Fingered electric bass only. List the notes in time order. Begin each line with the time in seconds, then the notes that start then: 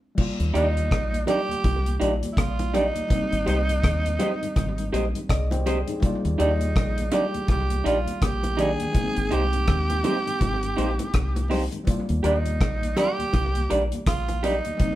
0.40 D#2
0.55 D#2
0.92 A#1
1.65 C2
2.01 A#1
2.38 A#1
3.32 G#1
3.47 C2
3.84 D#2
4.57 G#1
4.93 A#1
5.30 C2
6.25 D#2
6.40 D#2
6.76 A#1
7.49 C2
7.86 A#1
8.22 A#1
9.17 G#1
9.32 C2
9.68 D#2
10.41 G#1
10.78 A#1
11.14 C2
12.10 D#2
12.24 D#2
12.61 A#1
13.34 C2
13.71 A#1
14.07 A#1